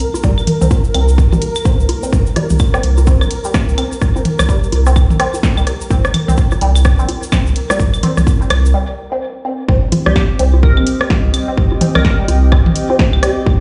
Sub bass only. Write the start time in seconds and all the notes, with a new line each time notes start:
0.24 C2
0.61 C2
0.94 C2
1.32 A#1
1.79 C2
2.13 C2
2.50 C2
2.83 C2
3.21 A#1
3.68 C2
4.01 C2
4.39 C2
4.72 C2
5.10 A#1
5.57 C2
5.90 C2
6.28 C2
6.61 C2
6.99 A#1
7.46 C2
7.79 C2
8.17 C2
8.50 C2
9.68 C2
10.06 C2
10.39 C2
10.77 A#1
11.24 C2
11.57 C2
11.95 C2
12.28 C2
12.66 A#1
13.13 C2
13.46 C2